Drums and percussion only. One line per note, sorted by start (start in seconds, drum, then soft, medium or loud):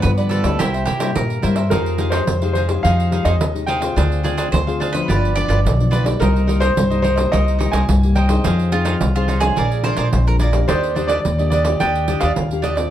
0.03 pandeiro medium
0.18 pandeiro soft
0.31 pandeiro medium
0.44 pandeiro medium
0.60 pandeiro medium
0.74 pandeiro soft
0.87 pandeiro medium
1.00 pandeiro medium
1.16 pandeiro medium
1.30 pandeiro soft
1.43 pandeiro medium
1.56 pandeiro medium
1.71 pandeiro medium
1.86 pandeiro soft
1.98 pandeiro medium
2.12 pandeiro medium
2.27 pandeiro medium
2.42 pandeiro soft
2.55 pandeiro soft
2.69 pandeiro medium
2.85 pandeiro medium
3.00 pandeiro soft
3.12 pandeiro medium
3.25 pandeiro medium
3.41 pandeiro medium
3.56 pandeiro soft
3.68 pandeiro medium
3.82 pandeiro medium
3.98 pandeiro medium
4.12 pandeiro soft
4.25 pandeiro medium
4.38 pandeiro medium
4.54 pandeiro medium
4.69 pandeiro soft
4.81 pandeiro medium
4.94 pandeiro medium
5.10 pandeiro medium
5.25 pandeiro soft
5.37 pandeiro medium
5.50 pandeiro medium
5.66 pandeiro medium
5.80 pandeiro soft
5.93 pandeiro medium
6.06 pandeiro medium
6.22 pandeiro medium
6.36 pandeiro soft
6.49 pandeiro medium
6.62 pandeiro medium
6.77 pandeiro medium
6.92 pandeiro soft
7.04 pandeiro medium
7.17 pandeiro medium
7.33 pandeiro medium
7.48 pandeiro soft
7.60 pandeiro medium
7.73 pandeiro medium
7.89 pandeiro medium
8.03 pandeiro soft
8.16 pandeiro medium
8.29 pandeiro medium
8.44 pandeiro medium
8.59 pandeiro soft
8.72 pandeiro soft
8.85 pandeiro medium
9.01 pandeiro medium
9.16 pandeiro soft
9.28 pandeiro medium
9.41 pandeiro medium
9.57 pandeiro medium
9.72 pandeiro soft
9.84 pandeiro medium
9.97 pandeiro medium
10.13 pandeiro medium
10.27 pandeiro soft
10.39 pandeiro medium
10.53 pandeiro medium
10.69 pandeiro medium
10.84 pandeiro soft
10.96 pandeiro medium
11.09 pandeiro medium
11.25 pandeiro medium
11.39 pandeiro soft
11.52 pandeiro medium
11.65 pandeiro medium
11.80 pandeiro medium
11.95 pandeiro soft
12.08 pandeiro medium
12.21 pandeiro medium
12.36 pandeiro medium
12.51 pandeiro soft
12.64 pandeiro medium
12.77 pandeiro medium